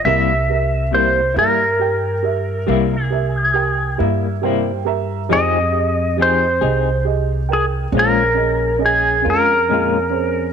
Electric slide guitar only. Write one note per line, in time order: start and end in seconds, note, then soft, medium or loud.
0.05 0.96 E5 medium
0.94 1.38 C5 medium
1.39 3.04 A#4 medium
3.04 3.97 G#4 medium
5.33 6.16 D#5 medium
6.22 7.05 C5 medium
7.53 7.65 G#4 medium
7.99 8.85 A#4 medium
8.86 9.25 G#4 medium
9.30 10.53 A#4 medium